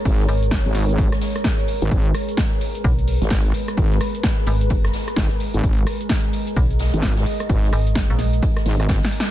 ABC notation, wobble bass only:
X:1
M:4/4
L:1/16
Q:"Swing 16ths" 1/4=129
K:G#m
V:1 name="Wobble bass" clef=bass
G,,,2 z3 G,,,4 z6 G,,, | G,,,2 z8 z G,,,3 z2 | G,,,2 z8 z2 G,,, z2 G,,, | G,,,2 z8 z G,,,3 z2 |
G,,,2 z8 G,,,3 z3 |]